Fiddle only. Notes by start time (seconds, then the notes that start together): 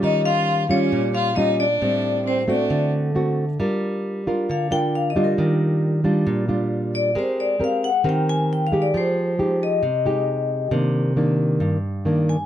0.03 D#4
0.25 F4
0.69 C#4
1.15 F4
1.37 D#4
1.60 D4
2.26 C4
2.49 D4